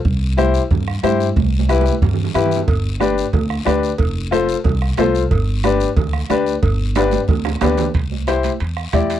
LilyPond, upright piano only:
\new Staff \with { instrumentName = "Upright piano" } { \time 4/4 \key c \major \tempo 4 = 182 r4 <e' g' c''>8 r4. <e' g' c''>8 r8 | r4 <e' g' b'>8 r4. <e' g' b'>8 r8 | r4 <d' g' b'>8 r4. <d' g' b'>8 r8 | r4 <f' a' c''>8 r4. <f' a' c''>8 r8 |
r4 <d' g' b'>8 r4. <d' g' b'>8 r8 | r4 <d' g' b'>8 r4. <d' g' b'>8 r8 | r4 <e' g' c''>8 r4. <e' g' d''>8 r8 | }